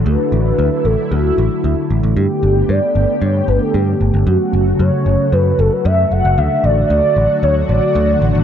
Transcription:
<<
  \new Staff \with { instrumentName = "Analog synth lead" } { \time 4/4 \key d \major \tempo 4 = 114 b'4. a'8 fis'4. r8 | g'4 d''4 cis''8 b'16 a'16 g'8. r16 | fis'4 cis''4 b'8 a'16 b'16 e''8 fis''8 | e''8 d''8 d''4 cis''8 d''4 r8 | }
  \new Staff \with { instrumentName = "Analog synth pad" } { \clef bass \time 4/4 \key d \major << { <fis a e'>1 | <a b g'>1 | <fis fis'>1~ | <fis fis'>1 | } \\ { d1 | d1 | cis1 | d1 | } >> }
  \new Staff \with { instrumentName = "Picked electric bass" } { \clef bass \time 4/4 \key d \major d,16 r16 a,,16 r16 d,16 r16 a,,16 r16 d,16 r16 a,,16 r16 d,16 r16 a,,16 a,,16 | g,16 r16 g,,16 r16 g,16 r16 g,,16 r16 g,16 r16 g,,16 r16 g,16 r16 g,,16 g,,16 | fis,16 r16 fis,,16 r16 fis,16 r16 fis,,16 r16 fis,16 r16 fis,,16 r16 fis,16 r16 fis,,16 fis,,16 | d,16 r16 a,,16 r16 d,16 r16 a,,16 r16 d,16 r16 a,,16 r16 d,16 r16 a,,16 a,,16 | }
>>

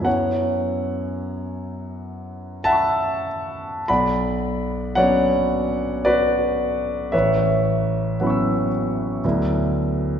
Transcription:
<<
  \new Staff \with { instrumentName = "Grand piano" } { \time 3/4 \key b \minor \tempo 4 = 55 << { r2 <b'' cis''' e'''>4 | r2. | r4 <fis'' b'' cis''' e'''>4 r4 | } \\ { <cis'' fis''>2 <e'' fis'' a''>4 | <d'' fis'' b''>4 <cis'' d'' fis''>4 <fis' b' d''>4 | <b' cis'' e''>4. r4. | } >> }
  \new Staff \with { instrumentName = "Grand piano" } { \time 3/4 \key b \minor <fis, fis b cis' e'>2. | b,,4 <fis b cis' d'>2 | a,,4 <fis b cis' e'>4 <d, fis b d' e'>4 | }
>>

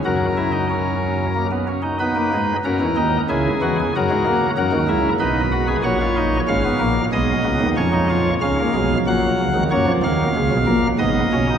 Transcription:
<<
  \new Staff \with { instrumentName = "Pipe organ" } { \time 3/4 \key fis \mixolydian \tempo 4 = 93 << { ais'2~ ais'8 r8 | b'4 ais'4 gis'4 | fis'4 ais'4 b'4 | cis''4 eis''4 dis''4 |
cis''4 eis''4 fis''4 | \key fis \major cis''8 eis''4. dis''4 | } \\ { fis'8 e'16 dis'16 cis'4 ais16 b16 cis'16 dis'16 | dis'4 cis'8 dis'8 e'8 fis'16 gis'16 | ais'4 fis'8 e'8 dis'8 fis'16 gis'16 | fis'16 eis'16 dis'8 cis'16 b16 ais8 gis8 b8 |
cis'16 dis'16 eis'8 cis'16 ais16 gis8 fis4 | ais4 gis8 ais8 b8 cis'16 dis'16 | } >> }
  \new Staff \with { instrumentName = "Pipe organ" } { \clef bass \time 3/4 \key fis \mixolydian <fis, fis>2~ <fis, fis>8 r8 | b16 ais16 <gis, gis>8 <fis, fis>16 <e, e>16 <dis, dis>8 <cis, cis>8 <e, e>8 | <fis, fis>16 <gis, gis>16 ais8 <fis, fis>16 <dis, dis>16 <cis, cis>8 <b,, b,>4 | <ais,, ais,>4 <gis,, gis,>8 <ais,, ais,>8 <b,, b,>8 <cis, cis>16 <dis, dis>16 |
<eis, eis>4 <cis, cis>8 <b,, b,>8 <ais,, ais,>8 <cis, cis>16 <dis, dis>16 | \key fis \major <fis, fis>16 <eis, eis>16 <dis, dis>8 <cis, cis>16 <b,, b,>16 <ais,, ais,>8 <gis,, gis,>8 <b,, b,>8 | }
>>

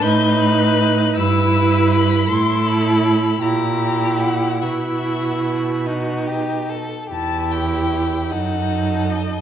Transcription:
<<
  \new Staff \with { instrumentName = "Violin" } { \time 6/8 \key e \minor \tempo 4. = 51 g'''8 fis'''4 e'''4 b''8 | c'''8 b''4 ais''4 fis''8 | e''4. r4. | a''8 g''4 fis''4 dis''8 | }
  \new Staff \with { instrumentName = "Violin" } { \time 6/8 \key e \minor b'4. b'4. | a'4. g'4. | fis'4. fis'8 g'8 a'8 | g'4. a'4. | }
  \new Staff \with { instrumentName = "Viola" } { \time 6/8 \key e \minor dis'4. e'4. | e'4. e'4. | e'4. dis'4~ dis'16 r16 | e'4. dis'4. | }
  \new Staff \with { instrumentName = "Cello" } { \clef bass \time 6/8 \key e \minor a,4. g,4. | a,4. ais,4. | b,2~ b,8. r16 | e,4. fis,4. | }
>>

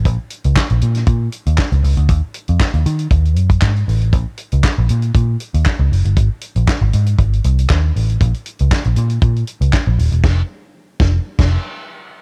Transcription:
<<
  \new Staff \with { instrumentName = "Picked electric bass" } { \clef bass \time 4/4 \key bes \minor \tempo 4 = 118 bes,,16 r8 des,16 r16 bes,,16 bes,8 bes,8 r16 ees,16 r16 des,16 des,16 d,16 | ees,16 r8 f,16 r16 ees,16 ees8 ees,8 ges,8 aes,8 a,,8 | bes,,16 r8 des,16 r16 bes,,16 bes,8 bes,8 r16 ees,16 r16 des,16 ges,,16 g,,16 | aes,,16 r8 bes,,16 r16 aes,,16 aes,8 aes,,8 c,8 ees,8 a,,8 |
bes,,16 r8 des,16 r16 bes,,16 bes,8 bes,8 r16 des,16 r16 bes,,16 ees,,16 e,,16 | f,,8 r4 f,,8 r16 f,,8 r4 r16 | }
  \new DrumStaff \with { instrumentName = "Drums" } \drummode { \time 4/4 <hh bd>8 hh16 hh16 <hc bd sn>16 hh16 hh16 <hh sn>16 <hh bd>8 hh16 hh16 <hc bd sn>16 hh16 hho16 hh16 | <hh bd>8 hh16 hh16 <hc bd sn>16 hh16 hh16 hh16 <hh bd>16 hh16 hh16 <hh bd>16 <hc bd sn>16 hh16 hho16 hh16 | <hh bd>8 hh16 hh16 <hc bd sn>8 hh16 hh16 <hh bd>8 hh16 hh16 <hc bd sn>8 hho16 hh16 | <hh bd>8 hh16 hh16 <hc bd sn>8 hh16 hh16 <hh bd>16 hh16 hh16 hh16 <hc bd sn>8 hho16 hh16 |
<hh bd>16 hh16 hh16 hh16 <hc bd sn>16 hh16 hh16 hh16 <hh bd>16 hh16 hh16 hh16 <hc bd sn>8 hho16 hh16 | <cymc bd sn>4 r8 <bd sn>8 r16 <cymc bd sn>8. r4 | }
>>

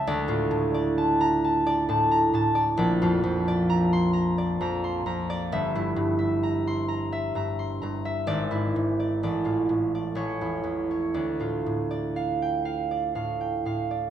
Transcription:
<<
  \new Staff \with { instrumentName = "Harp" } { \time 3/4 \key d \minor \tempo 4 = 65 << { r4 r16 bes''8 r4 r16 | r4 r16 c'''8 r4 r16 | r4 r16 c'''8 r4 r16 | d''4 d''4 cis''4 |
r4 r16 g''8 r4 r16 | } \\ { <d'' a''>16 f'16 a,16 d''16 a''8 a''16 d''16 a''16 bes''16 a''16 d''16 | d''16 f'16 f,16 d''16 bes''8 bes''16 d''16 bes''16 c'''16 bes''16 d''16 | e''16 e'16 g,16 e''16 bes''8 bes''16 e''16 bes''16 c'''16 bes''16 e''16~ | e''16 e'16 gis,16 d''8 f'16 a,16 d''16 r16 e'16 e,16 cis''16 |
d''16 f'16 a,16 d''16 f''8 f''16 d''16 f''16 g''16 f''16 d''16 | } >> }
  \new Staff \with { instrumentName = "Harp" } { \clef bass \time 3/4 \key d \minor d,16 a,4.~ a,16 a,8 a,8 | bes,,16 f,4.~ f,16 f,8 f,8 | g,,16 g,4.~ g,16 g,8 g,8 | gis,,16 gis,8. a,,16 a,8. a,,16 e,8. |
d,16 a,4.~ a,16 a,8 a,8 | }
>>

